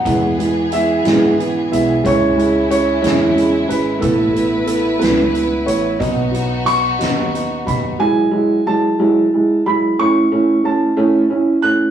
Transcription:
<<
  \new Staff \with { instrumentName = "Grand piano" } { \time 6/8 \key e \major \tempo 4. = 60 fis''4 e''4. e''8 | cis''4 cis''4. b'8 | a'4 a'8 b'4 cis''8 | dis''4 cis'''4. b''8 |
gis''4 a''4. b''8 | cis'''4 a''4 r8 fis'''8 | }
  \new Staff \with { instrumentName = "String section" } { \time 6/8 \key e \major <e b gis'>2. | <cis gis e'>2. | <a e' b'>2. | <b dis' fis'>2. |
r2. | r2. | }
  \new Staff \with { instrumentName = "Upright piano" } { \time 6/8 \key e \major <gis b e'>8 <gis b e'>8 <gis b e'>8 <gis b e'>8 <b e'>8 <gis b e'>8 | <gis cis' e'>8 <gis cis' e'>8 <gis cis' e'>8 <gis cis' e'>8 <gis cis' e'>8 <gis cis' e'>8 | <a b e'>8 <a b e'>8 <a b e'>8 <a b e'>8 <b e'>8 <a b e'>8 | <fis b dis'>8 <fis b dis'>8 <fis b dis'>8 <fis b dis'>8 <b dis'>8 <fis b dis'>8 |
<fis gis e'>8 <fis gis e'>8 <fis gis e'>8 <fis gis e'>8 <gis e'>8 <fis gis e'>8 | <a cis' e'>8 <a cis' e'>8 <a cis' e'>8 <a cis' e'>8 <cis' e'>8 <a cis' e'>8 | }
  \new Staff \with { instrumentName = "Fretless electric bass" } { \clef bass \time 6/8 \key e \major e,4. gis,4 b,,8 | cis,4. e,4 gis,,8 | a,,4. cis,4 a,,8 | b,,4. dis,4 dis,8 |
r2. | r2. | }
  \new DrumStaff \with { instrumentName = "Drums" } \drummode { \time 6/8 <hh bd>8 hh8 hh8 <hh sn>8 hh8 hh8 | <hh bd>8 hh8 hh8 <hh sn>8 hh8 hh8 | <hh bd>8 hh8 hh8 <hh sn>8 hh8 hh8 | <hh bd>8 hh8 hh8 <hh sn>8 hh8 <hh bd>8 |
r4. r4. | r4. r4. | }
>>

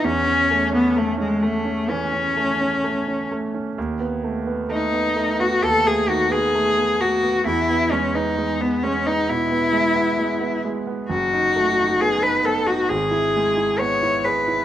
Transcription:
<<
  \new Staff \with { instrumentName = "Cello" } { \time 4/4 \key e \major \tempo 4 = 66 cis'8. b16 a16 gis16 a8 cis'4. r8 | r4 dis'8. fis'16 a'16 gis'16 fis'16 gis'8. fis'8 | e'8 cis'16 dis'8 b16 cis'16 dis'16 e'4. r8 | fis'4 gis'16 b'16 a'16 fis'16 gis'4 cis''8 b'8 | }
  \new Staff \with { instrumentName = "Grand piano" } { \time 4/4 \key e \major e,16 cis'16 a16 cis'16 a16 cis'16 a16 cis'16 e16 cis'16 a16 cis'16 a16 cis'16 a16 cis'16 | dis,16 b16 a16 b16 a16 b16 a16 b16 dis,16 a16 dis16 b16 a16 b16 a16 b16 | e,16 b16 gis16 b16 gis16 b16 gis16 b16 b,16 b16 gis16 b16 gis16 b16 gis16 b16 | fis,,16 dis'16 a16 dis'16 b16 dis'16 b16 dis'16 gis,,16 e'16 gis16 e'16 b16 e'16 gis'16 e'16 | }
>>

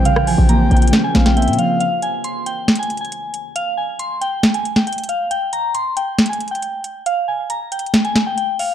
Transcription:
<<
  \new Staff \with { instrumentName = "Synth bell" } { \time 4/4 \key bes \dorian \tempo 4 = 137 f''8 aes''8 bes''8 g''8. aes''8 g''16 g''8 f''8 | f''8 aes''8 c'''8 g''8. aes''8 aes''4~ aes''16 | f''8 aes''8 c'''8 g''8. aes''8 g''16 g''8 f''8 | g''8 bes''8 c'''8 g''8. aes''8 g''4~ g''16 |
f''8 aes''8 bes''8 g''8. aes''8 g''16 g''8 f''8 | }
  \new Staff \with { instrumentName = "Soft synth lead" } { \time 4/4 \key bes \dorian g''2~ g''8 f''8 e''8 f''8 | r1 | r1 | r1 |
r1 | }
  \new Staff \with { instrumentName = "Ambient pad" } { \time 4/4 \key bes \dorian <des bes f' c''>1 | r1 | r1 | r1 |
r1 | }
  \new Staff \with { instrumentName = "Synth keys" } { \time 4/4 \key bes \dorian des8 f8 bes4 des'8 c'8 bes8 f8 | r1 | r1 | r1 |
r1 | }
  \new Staff \with { instrumentName = "808-style bass" } { \clef bass \time 4/4 \key bes \dorian bes,,8. bes,,8. bes,,8 r8 bes,,8. bes,16 r8 | r1 | r1 | r1 |
r1 | }
  \new DrumStaff \with { instrumentName = "Drums" } \drummode { \time 4/4 hh16 ss16 hho8 hh8 hh32 hh32 hh32 hh32 <hh sn>8 <hh sn>16 <hh sn>16 hh32 hh32 hh32 hh32 hh8 | hh8 hh8 hh8 hh8 \tuplet 3/2 { <hh sn>16 hh16 hh16 hh16 hh16 hh16 } hh8 hh8 | hh4 hh8 hh8 <hh sn>16 hh16 hh16 sn16 hh32 hh32 hh32 hh32 hh8 | hh8 hh8 hh8 hh8 \tuplet 3/2 { <hh sn>16 hh16 hh16 hh16 hh16 hh16 } hh8 hh8 |
hh4 \tuplet 3/2 { hh16 r16 r16 hh16 hh16 hh16 } <hh sn>16 hh16 <hh sn>8 hh8 hho8 | }
>>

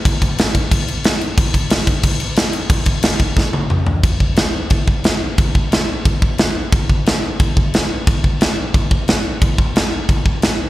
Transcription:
\new DrumStaff \with { instrumentName = "Drums" } \drummode { \time 4/4 \tempo 4 = 179 <cymc bd>8 <cymc bd>8 <cymc sn>8 <cymc bd>8 <cymc bd>8 cymc8 <cymc sn>8 cymc8 | <cymc bd>8 <cymc bd>8 <cymc sn>8 <cymc bd>8 <cymc bd>8 cymc8 <cymc sn>8 cymc8 | <cymc bd>8 <cymc bd>8 <cymc sn>8 <cymc bd>8 <bd sn>8 tommh8 toml8 tomfh8 | <cymc bd>8 bd8 <cymc sn>4 <cymc bd>8 bd8 <cymc sn>4 |
<cymc bd>8 bd8 <cymc sn>4 <cymc bd>8 bd8 <cymc sn>4 | <cymc bd>8 bd8 <cymc sn>4 <cymc bd>8 bd8 <cymc sn>4 | <cymc bd>8 bd8 <cymc sn>4 <cymc bd>8 bd8 <cymc sn>4 | <cymc bd>8 bd8 <cymc sn>4 <cymc bd>8 bd8 <cymc sn>4 | }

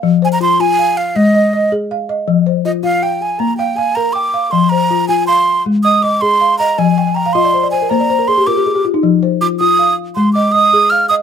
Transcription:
<<
  \new Staff \with { instrumentName = "Flute" } { \time 12/8 \key f \dorian \tempo 4. = 107 r8 aes''16 bes''16 c'''8 aes''4 f''8 ees''4. r4. | r4 ees''8 f''8 g''8 aes''8 bes''8 g''8 aes''8 bes''8 d'''4 | c'''8 bes''4 aes''8 c'''4 r8 ees'''8 d'''8 c'''4 bes''8 | aes''4 bes''8 c'''4 aes''8 bes''4 c'''8 d'''4 r8 |
r4 d'''8 ees'''4 r8 c'''8 d'''8 ees'''4 f'''8 ees'''8 | }
  \new Staff \with { instrumentName = "Balafon" } { \time 12/8 \key f \dorian << { <f'' g''>8 c''8 f'4 f''4. ees''8 ees''4 f''8 ees''8~ | ees''8 c''8 f'4 f''4. f''8 f''4 g''8 f''8~ | f''8 c''8 f'4 f''4. ees''8 ees''4 f''8 ees''8~ | ees''8 g''16 aes''16 g''16 f''16 ees''16 d''16 c''16 d''16 c''16 bes'16 c''16 d''16 c''16 bes'16 aes'16 g'16 f'16 g'16 aes'16 g'16 f'16 ees'16~ |
ees'16 r16 c''8 f'4 f''4. ees''8 ees''4 f''8 ees''8 | } \\ { f4 r8 f'4 r8 aes4 r8 aes'4 r8 | f4 r8 f'4 r8 bes4 r8 bes'4 r8 | f4 r8 f'4 r8 aes4 r8 aes'4 r8 | f4 r8 f'4 r8 bes4 r8 bes'4 r8 |
f4 r8 f'4 r8 aes4 r8 aes'4 r8 | } >> }
>>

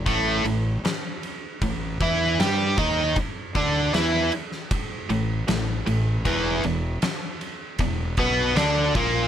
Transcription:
<<
  \new Staff \with { instrumentName = "Overdriven electric guitar" } { \clef bass \time 4/4 \key a \major \tempo 4 = 78 <a, a>8 a,8 r4 a,8 <e e'>8 <g g'>8 <dis dis'>8 | r8 <d d'>8 <e e'>8 r4 a,8 a,8 a,8 | <e, e>8 e,8 r4 e,8 <b, b>8 <d d'>8 <ais, ais>8 | }
  \new Staff \with { instrumentName = "Fingered electric bass" } { \clef bass \time 4/4 \key a \major a,,8 a,,8 r4 a,,8 e,8 g,8 dis,8 | r8 d,8 e,8 r4 a,,8 a,,8 a,,8 | e,,8 e,,8 r4 e,,8 b,,8 d,8 ais,,8 | }
  \new DrumStaff \with { instrumentName = "Drums" } \drummode { \time 4/4 <bd cymr>8 cymr8 <cymr sn>8 cymr8 <bd cymr>8 <bd cymr>8 <cymr sn>8 <bd cymr>8 | <bd cymr>8 <bd cymr>8 <cymr sn>8 cymr16 sn16 <bd cymr>8 cymr8 <cymr sn>8 cymr8 | <bd cymr>8 cymr8 <cymr sn>8 cymr8 <bd cymr>8 <bd cymr>8 <cymr sn>8 <bd cymr>8 | }
>>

